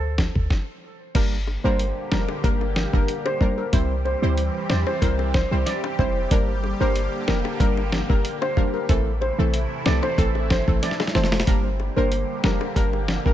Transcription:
Already playing: 808-style bass D2, steel pan A4
0.18 kick, snare
0.35 808-style bass D2, kick
0.50 kick, snare
1.15 808-style bass G1, analog synth pad D3 G3 A#3 G4, synth stab G3 A#3 D4 A#4, kick, closed hi-hat, crash
1.47 high bongo
1.64 808-style bass G1, synth stab G3 A#3 D4 A#4, steel pan C5
1.79 closed hi-hat
2.12 808-style bass F1, synth stab G3 A#3 D4 A#4, steel pan A#4, snare, low bongo
2.29 high bongo
2.44 808-style bass G1, synth stab G3 A#3 D4 A#4, steel pan A#4, kick, closed hi-hat
2.61 high bongo
2.76 snare
2.93 808-style bass G1, synth stab G3 A#3 D4 A#4, steel pan A#4, kick
3.08 closed hi-hat
3.25 steel pan C5, high bongo
3.40 synth stab G3 A#3 D4 A#4, kick, low bongo
3.58 steel pan A#4
3.73 808-style bass C2, analog synth pad E3 C4 G4, synth stab G3 C4 E4 C5, kick, closed hi-hat
4.05 steel pan C5, high bongo
4.22 808-style bass D2, synth stab G3 C4 E4 C5
4.37 closed hi-hat
4.69 808-style bass E2, synth stab G3 C4 E4 C5, steel pan D5, snare, low bongo
4.87 steel pan C5, high bongo
5.02 808-style bass C2, synth stab G3 C4 E4 C5, steel pan A#4, kick, closed hi-hat
5.19 high bongo
5.34 steel pan C5, kick, snare
5.51 808-style bass C2, synth stab G3 C4 E4 C5
5.66 steel pan D5, snare, closed hi-hat
5.84 high bongo
5.99 808-style bass F1, synth stab G3 C4 E4 C5, steel pan C5, kick, low bongo
6.31 808-style bass G1, analog synth pad D3 A#3, synth stab G3 A#3 D4 A#4, kick, closed hi-hat
6.64 high bongo
6.80 808-style bass G1, synth stab G3 A#3 D4 A#4, steel pan C5
6.96 closed hi-hat
7.28 808-style bass F1, synth stab G3 A#3 D4 A#4, steel pan A#4, snare, low bongo
7.45 high bongo
7.60 808-style bass G1, synth stab G3 A#3 D4 A#4, steel pan A#4, kick, closed hi-hat
7.77 high bongo
7.92 snare
8.09 808-style bass G1, synth stab G3 A#3 D4 A#4, steel pan A#4, kick
8.25 closed hi-hat
8.42 steel pan C5, high bongo
8.57 synth stab G3 A#3 D4 A#4, kick, low bongo
8.74 steel pan A#4
8.89 808-style bass A1, analog synth pad C3 E3 A3 E4, synth stab E3 A3 C4 A4, kick, closed hi-hat
9.21 steel pan C5, high bongo
9.38 808-style bass A#1, synth stab E3 A3 C4 A4
9.54 closed hi-hat
9.86 808-style bass C2, synth stab E3 A3 C4 A4, steel pan D5, snare, low bongo
10.03 steel pan C5, high bongo
10.18 808-style bass A1, synth stab E3 A3 C4 A4, steel pan A4, kick, closed hi-hat
10.35 high bongo
10.50 steel pan C5, kick, snare
10.67 808-style bass A1, synth stab E3 A3 C4 A4, kick
10.83 steel pan D5, snare, closed hi-hat
10.91 snare
11.00 snare, high bongo
11.07 snare
11.15 808-style bass F1, synth stab E3 A3 C4 A4, steel pan C5, snare, low bongo
11.24 snare
11.32 snare
11.40 snare
11.47 808-style bass G1, analog synth pad D3 G3 A#3 G4, synth stab G3 A#3 D4 A#4, kick, closed hi-hat
11.80 high bongo
11.96 808-style bass G1, synth stab G3 A#3 D4 A#4, steel pan C5
12.12 closed hi-hat
12.44 808-style bass F1, synth stab G3 A#3 D4 A#4, steel pan A#4, snare, low bongo
12.61 high bongo
12.76 808-style bass G1, synth stab G3 A#3 D4 A#4, steel pan A#4, kick, closed hi-hat
12.93 high bongo
13.08 snare
13.25 808-style bass G1, synth stab G3 A#3 D4 A#4, steel pan A#4, kick

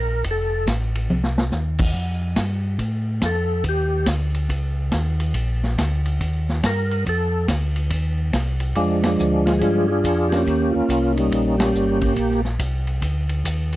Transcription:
Already playing: tonewheel organ A#1 A#4
0.24 tonewheel organ F1, kick, ride
0.31 tonewheel organ A4
0.67 tonewheel organ A1, kick, snare, hi-hat pedal, ride
0.95 ride
1.10 tonewheel organ C2, high tom
1.24 snare
1.38 snare
1.52 tonewheel organ D#2, snare, hi-hat pedal
1.79 kick, crash
1.94 tonewheel organ F2, kick
2.36 tonewheel organ G2, kick, snare, hi-hat pedal, ride
2.79 tonewheel organ A2, kick, ride
3.21 tonewheel organ F2, kick, snare, hi-hat pedal, ride
3.26 tonewheel organ A4
3.64 tonewheel organ D#2, kick, ride
3.69 tonewheel organ G4
4.06 tonewheel organ D2, kick, snare, hi-hat pedal, ride
4.34 ride
4.49 tonewheel organ C#2, kick, ride
4.92 tonewheel organ D#2, kick, snare, hi-hat pedal, ride
5.20 ride
5.34 tonewheel organ A#1, kick, ride
5.63 snare
5.78 tonewheel organ D2, kick, snare, hi-hat pedal, ride
6.05 ride
6.21 tonewheel organ D#2, kick, ride
6.49 snare
6.63 tonewheel organ G2 A#4, kick, snare, hi-hat pedal, ride
6.91 ride
7.06 tonewheel organ F2 A4, kick, ride
7.48 tonewheel organ D2, kick, snare, hi-hat pedal, ride
7.76 ride
7.90 tonewheel organ D#2, kick, ride
8.33 tonewheel organ C2, kick, snare, hi-hat pedal, ride
8.60 ride
8.75 tonewheel organ F2 F3 G#3 D4, kick, ride
9.03 tonewheel organ F3 G#3 D4, snare, ride
9.19 tonewheel organ D2, hi-hat pedal
9.46 tonewheel organ F4, snare, ride
9.59 tonewheel organ G2 D4 G#4, kick, ride
9.63 tonewheel organ F4
9.88 tonewheel organ D4 F4 G#4
10.03 tonewheel organ F2, kick, hi-hat pedal, ride
10.28 tonewheel organ A#3 C#4 G4, snare, ride
10.46 tonewheel organ D#2, kick, ride
10.71 tonewheel organ A#3 F4
10.75 tonewheel organ D#2 C#4
10.88 tonewheel organ C2, kick, hi-hat pedal, ride
11.15 tonewheel organ A#3 D#4, ride
11.19 tonewheel organ G3
11.31 tonewheel organ A#1, kick, ride
11.58 tonewheel organ A#3 C#4 G4, snare, ride
11.74 tonewheel organ G1, hi-hat pedal
12.01 kick, ride
12.16 tonewheel organ A#1, kick, ride
12.31 snare
12.45 snare
12.59 tonewheel organ C2, kick, hi-hat pedal, ride
12.87 ride
13.02 tonewheel organ D2, kick, ride
13.29 ride
13.45 tonewheel organ D#2, kick, hi-hat pedal, ride
13.72 ride

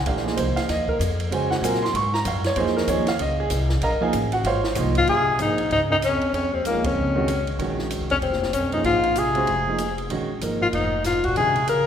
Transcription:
0.06 upright bass A#1, grand piano E3 A3 D4 G4 F5, ride
0.17 snare
0.24 grand piano F3 A#3 D#4 G#4, snare
0.37 upright bass C2, grand piano C5, hi-hat pedal, ride
0.56 grand piano F5, muted upright bass stroke, snare, ride
0.69 upright bass D#2, grand piano D#5, snare, ride
0.88 grand piano A#4, kick
0.99 upright bass F2, hi-hat pedal, ride
1.20 ride
1.31 upright bass C#3, grand piano G#3 C#4 F#4 C5 G#5, ride
1.51 grand piano F#5, snare
1.61 upright bass A#2, grand piano F#3 C4 F4 A#4 G#5, hi-hat pedal, ride
1.75 snare
1.82 grand piano C6, snare
1.94 upright bass G#2, grand piano C#6, ride
2.14 grand piano A#5, snare
2.25 upright bass F#2, grand piano F5, hi-hat pedal, ride
2.44 grand piano C#5, snare, ride
2.56 upright bass F2, grand piano F3 A#3 D#4 G#4 C5, ride
2.67 snare
2.77 grand piano A#4, snare
2.87 upright bass D#2, grand piano F3 A#3 D#4 G#4 C#5, hi-hat pedal, ride
3.07 grand piano F5, snare, ride
3.19 upright bass C#2, grand piano D#5, ride
3.40 grand piano G#4
3.50 upright bass C2, hi-hat pedal, ride
3.69 snare
3.81 upright bass A#1, grand piano A#4 D#5 F5 A#5, ride
4.01 grand piano F3 A#3 D#4 G#4 D#5 F5 G#5, muted upright bass stroke
4.13 upright bass A1, hi-hat pedal, ride
4.32 grand piano F#4 F#5, ride
4.44 upright bass G#1, grand piano F4 C5 C#5 F5, ride
4.64 snare
4.75 upright bass C2, grand piano F3 A#3 D#4 F4, hi-hat pedal, ride
4.95 bass clarinet G#2, tenor saxophone F4, ride
5.07 upright bass A#1, bass clarinet C3, tenor saxophone G#4, ride
5.39 bass clarinet G#2, grand piano F3 A#3 D#4 G#4, tenor saxophone D#4, hi-hat pedal, ride
5.58 ride
5.71 upright bass C#2, bass clarinet G#2, tenor saxophone D#4, ride
5.90 bass clarinet F#2, tenor saxophone D#4
6.02 bass clarinet F2, tenor saxophone C#4, hi-hat pedal, ride
6.21 muted upright bass stroke, ride
6.33 upright bass F2, bass clarinet F2, tenor saxophone C#4, ride
6.52 bass clarinet D#2, tenor saxophone C4
6.64 bass clarinet C#2, grand piano F3 A#3 D#4 G#4, tenor saxophone A#3, hi-hat pedal, ride
6.74 upright bass D#2
6.83 upright bass C2, bass clarinet F2, tenor saxophone C#4, kick, ride
6.96 upright bass C#2
7.15 grand piano D#3 G#3 C#4 F#4
7.28 hi-hat pedal, ride
7.47 ride
7.59 upright bass A#1, grand piano D#3 G#3 C#4 F#4, ride
7.79 snare
7.90 hi-hat pedal, ride
8.01 upright bass C2
8.10 upright bass B1, bass clarinet F2, tenor saxophone C#4, ride
8.21 upright bass F1, bass clarinet D#2, tenor saxophone C4, ride
8.33 snare
8.43 snare
8.53 upright bass B1, bass clarinet F2, tenor saxophone C#4, hi-hat pedal, ride
8.72 bass clarinet F#2, grand piano F3 A#3 D#4 G#4, tenor saxophone D#4, ride
8.84 upright bass A#1, bass clarinet G#2, tenor saxophone F4, ride
9.03 ride
9.15 bass clarinet C3, tenor saxophone G#4, hi-hat pedal, ride
9.35 grand piano G#3 C#4 F#4 C5, ride
9.47 upright bass F1, ride
9.68 grand piano F3 A#3 D#4 G#4
9.78 hi-hat pedal, ride
9.98 ride
10.10 upright bass A#1, grand piano D#3 G#3 C#4 F#4, ride
10.41 upright bass G#1, grand piano F3 A#3 D#4 A#4, hi-hat pedal, ride
10.61 bass clarinet G#2, tenor saxophone F4
10.73 upright bass F1, bass clarinet G#2, tenor saxophone D#4, ride
11.04 bass clarinet G#2, tenor saxophone F4, snare, hi-hat pedal, ride
11.24 bass clarinet A#2, tenor saxophone F#4, kick, ride
11.36 upright bass A#1, bass clarinet C3, grand piano D#3 G#3 C#4 F#4, tenor saxophone G#4, ride
11.56 ride
11.67 bass clarinet C#3, tenor saxophone A#4, hi-hat pedal, ride

